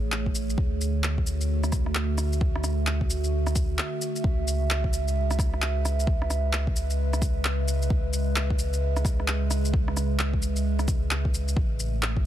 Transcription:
0.00 0.56 A1 medium
0.00 0.57 A2 medium
0.00 4.23 A3 medium
0.00 1.66 G#4 medium
0.00 1.73 C#5 medium
0.12 clap loud
0.26 kick medium
0.35 shaker medium
0.50 shaker soft
0.57 3.78 D2 medium
0.57 4.24 D3 medium
0.57 kick loud
0.81 shaker soft
0.99 5.96 F#4 medium
1.04 clap loud
1.18 kick medium
1.27 shaker medium
1.41 shaker soft
1.64 cross-stick medium
1.64 shaker soft
1.72 kick medium
1.72 cross-stick medium
1.72 shaker medium
1.80 12.26 E5 medium
1.86 cross-stick soft
1.95 clap loud
2.18 cross-stick medium
2.18 shaker medium
2.33 shaker soft
2.41 kick loud
2.56 cross-stick medium
2.64 cross-stick medium
2.64 shaker medium
2.87 clap loud
3.01 kick medium
3.10 shaker medium
3.24 shaker soft
3.47 cross-stick medium
3.47 shaker soft
3.56 kick loud
3.56 shaker medium
3.79 clap loud
4.02 shaker medium
4.16 shaker soft
4.24 11.55 C#2 medium
4.24 11.57 C#3 medium
4.24 kick loud
4.48 shaker medium
4.69 11.57 G#3 medium
4.69 clap loud
4.84 kick medium
4.93 shaker medium
5.08 shaker soft
5.20 12.17 B4 medium
5.31 cross-stick medium
5.31 shaker soft
5.39 kick loud
5.39 cross-stick medium
5.39 shaker medium
5.54 cross-stick soft
5.62 clap loud
5.85 cross-stick medium
5.85 shaker medium
6.00 shaker soft
6.07 kick loud
6.22 cross-stick medium
6.30 cross-stick medium
6.30 shaker medium
6.53 clap loud
6.67 kick medium
6.76 shaker medium
6.90 shaker soft
7.13 cross-stick medium
7.13 shaker soft
7.22 kick loud
7.22 shaker medium
7.45 clap loud
7.68 shaker medium
7.82 shaker soft
7.90 kick loud
8.13 shaker medium
8.36 clap loud
8.50 kick medium
8.59 shaker medium
8.73 shaker soft
8.97 cross-stick medium
8.97 shaker soft
9.05 kick loud
9.05 cross-stick medium
9.05 shaker medium
9.20 cross-stick soft
9.28 clap loud
9.51 cross-stick medium
9.51 shaker medium
9.65 shaker soft
9.74 kick loud
9.88 cross-stick medium
9.97 cross-stick soft
9.97 shaker medium
10.19 clap loud
10.34 kick medium
10.42 shaker medium
10.56 shaker soft
10.79 cross-stick medium
10.79 shaker soft
10.88 kick loud
10.88 shaker medium
11.11 clap loud
11.25 kick medium
11.34 shaker medium
11.48 shaker soft
11.55 12.26 A1 medium
11.55 12.26 A2 medium
11.55 kick loud
11.75 12.26 A3 medium
11.80 shaker soft
12.03 12.26 G#4 medium
12.03 clap loud
12.17 kick medium

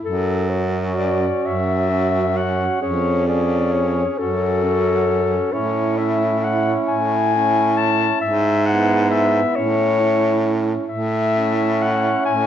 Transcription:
0.03 1.28 F#2 medium
0.03 0.51 A4 medium
0.50 1.88 C#4 soft
0.50 1.87 F#4 soft
0.50 0.98 C#5 soft
0.98 1.48 D5 medium
1.44 2.66 F#2 soft
1.44 2.38 E5 medium
1.90 2.80 C#4 soft
1.90 2.80 F#4 soft
2.36 2.82 F#5 medium
2.81 4.04 F2 medium
2.81 3.27 C#4 soft
2.81 3.26 G#4 soft
2.81 3.27 C#5 medium
3.27 4.18 C#4 soft
3.27 4.17 G#4 soft
3.27 3.74 D5 medium
3.73 4.20 C#5 medium
4.18 5.38 F#2 soft
4.18 4.63 C#4 soft
4.18 4.64 F#4 soft
4.18 5.54 A4 medium
4.63 5.52 C#4 soft
4.63 5.52 F#4 soft
5.52 6.74 A2 medium
5.52 5.97 C#4 soft
5.52 5.98 E4 soft
5.52 6.00 C#5 medium
5.97 7.17 C#4 soft
5.97 7.32 E4 soft
5.97 6.45 E5 medium
6.44 6.75 F#5 medium
6.88 8.08 A2 medium
6.88 7.79 G#5 medium
7.34 8.21 C#4 soft
7.34 8.22 E4 soft
7.78 8.21 A5 medium
8.21 9.41 G#2 medium
8.21 8.67 E5 medium
8.66 9.55 B3 soft
8.66 9.55 E4 soft
8.66 9.10 F#5 medium
9.11 9.57 E5 medium
9.56 10.75 A2 medium
9.56 10.01 C#4 soft
9.56 10.00 E4 soft
9.56 10.63 C#5 medium
10.00 10.88 C#4 soft
10.00 10.88 E4 soft
10.88 12.11 A2 medium
10.88 11.83 E5 medium
11.35 12.47 C#4 medium
11.35 12.47 E4 soft
11.82 12.24 F#5 medium
12.25 12.47 A2 medium
12.25 12.47 G#5 medium

